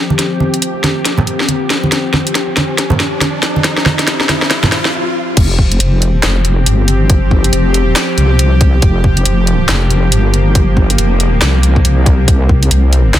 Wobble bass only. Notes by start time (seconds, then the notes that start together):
5.37 F1
5.80 F1
6.23 F1
6.67 G1
7.53 F1
8.18 C2
8.82 F1
9.26 F1
9.69 F1
10.12 G1
10.99 F1
11.42 C2
11.85 C2
12.28 C2
12.71 C2
13.14 C2